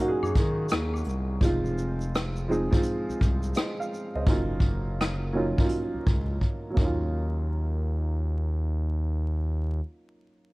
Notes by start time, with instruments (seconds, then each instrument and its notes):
Already playing: flute section F4 F5 C#6, upright piano F4
0.00 upright piano F#3 A#3 C#4 D#4 F#4, vibraphone F#4
0.08 upright piano G#4
0.22 analog synth bass F#2, vibraphone G#4, high woodblock, shaker
0.35 analog synth bass D#3, vibraphone G#4, kick, maracas, shaker
0.69 analog synth bass D#2, cross-stick, closed hi-hat, shaker, maracas
0.94 high woodblock, shaker
1.05 analog synth bass C2, maracas
1.09 shaker
1.41 analog synth bass F1, upright piano F3 G#3 C4 D#4 F4, kick, closed hi-hat, shaker
1.66 shaker
1.78 shaker
2.01 shaker
2.15 cross-stick, closed hi-hat, shaker
2.36 shaker
2.48 upright piano F3 G#3 C4 D#4 G#4
2.52 shaker
2.71 upright piano F3 G#3 C4 D#4 F4, kick, shaker
2.83 closed hi-hat, shaker
3.08 analog synth bass C2, shaker
3.21 analog synth bass C2, kick, shaker
3.43 shaker
3.55 upright piano C5 D#5, cross-stick, closed hi-hat, shaker
3.80 upright piano F5, shaker
3.94 shaker
4.15 analog synth bass C#2, upright piano C5 D#5
4.26 analog synth bass F#1, upright piano F#3 A#3 C#4 D#4 F4, kick, closed hi-hat
4.60 kick
5.01 cross-stick, closed hi-hat
5.33 upright piano F#3 A#3 C#4 D#4 F4
5.57 upright piano F3 A#3 C#4 D#4 F4, kick
5.63 upright piano F#3
5.69 closed hi-hat
5.94 analog synth bass C#2
6.07 analog synth bass C#2, kick
6.41 kick
6.70 upright piano F#3 A#3
6.77 analog synth bass D#2, upright piano C#4, kick
6.81 upright piano D#4 F4